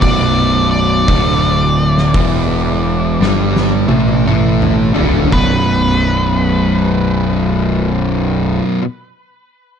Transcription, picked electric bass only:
0.02 B0
1.09 D1
2.14 E1
3.20 G1
3.88 A1
4.26 A1
4.94 D1
5.32 B0

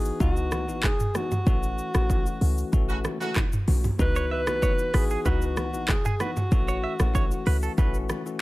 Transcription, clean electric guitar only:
4.16 C#5
4.31 E5
4.63 C#5
4.94 B4
5.11 G#4
5.26 B4
6.06 G#4
6.21 B4
6.68 C#5
6.84 E5
7.15 C#5
7.47 B4
7.63 A4
7.78 B4

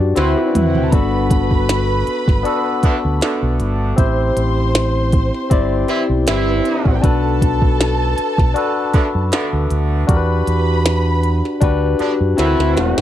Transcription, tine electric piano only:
Already playing: D4 F#4 G4 D5
0.15 C4 E4 F#4 B4
0.91 B3 D4 F#4 A4
2.43 B3 D4 F#4 A4
3.96 C4 E4 G4 C5
5.50 C4 E4 G4 D5
7.01 D4 F#4 A4 B4
8.54 D4 F#4 A4 B4
10.07 D4 F#4 G4 A#4
10.17 B4
11.60 D4 F#4 G4 B4
12.37 C4 E4 F#4 A#4
12.46 B4

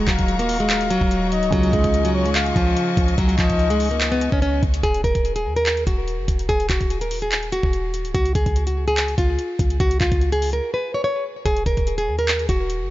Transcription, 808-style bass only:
0.08 D#1
1.01 D#1
1.43 C#1
1.53 C#2
1.73 C#2
2.56 C#2
2.97 C#2
3.18 C#2
3.39 C#2
4.32 C#2
4.63 C#2
4.83 D#1
5.04 D#1
5.45 D#2
5.87 D#1
6.18 F#1
6.28 D#1
6.49 D#1
6.70 D#1
7.63 D#1
8.05 C#1
8.15 C#2
8.35 C#2
8.46 C#2
9.18 C#2
9.59 C#2
9.80 C#2
10.01 C#2
10.12 C#2
11.46 D#1
11.66 D#1
12.08 D#2
12.49 D#1
12.81 F#1

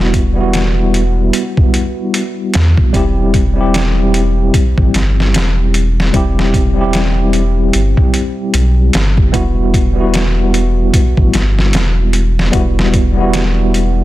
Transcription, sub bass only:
Already playing: E1
2.55 E2
2.94 E1
4.78 A1
4.95 G1
5.34 E1
6.14 E1
7.75 G1
8.54 B1
8.95 G1
9.34 E1
11.18 A1
11.34 G1
11.74 E1
12.54 E1

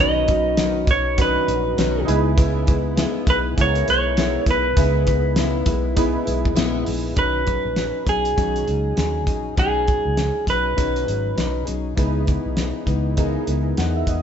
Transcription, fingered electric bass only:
Already playing: B1
0.87 B1
1.48 A#1
1.78 B1
2.08 C#2
3.27 B1
3.57 C#2
3.88 B1
4.46 B1
4.77 C#2
5.66 B1
6.28 B1
6.58 A#1
6.88 A#1
7.16 B1
7.65 A#1
8.07 B1
8.38 B1
8.68 C#2
8.97 D#2
9.27 A#1
9.58 B1
10.05 C#2
10.47 B1
10.78 B1
11.08 G#1
11.38 B1
11.68 B1
11.97 C#2
12.46 B1
12.87 C#2
13.47 C#2
13.78 E2
14.07 E1

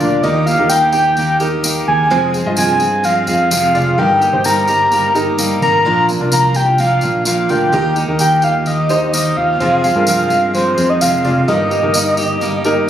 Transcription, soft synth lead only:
Already playing: D5
0.23 D#5
0.46 F5
0.69 G5
0.93 G5
1.87 G#5
2.57 G#5
3.05 F5
3.28 F5
3.51 F5
3.99 G5
4.46 A#5
4.69 A#5
5.62 A#5
6.33 A#5
6.56 G5
6.80 F5
7.27 F5
7.50 G5
8.20 G5
8.44 F5
8.67 D#5
9.14 D#5
9.37 F5
9.84 F5
10.07 F5
10.54 C5
10.90 D#5
11.01 F5
11.48 D#5

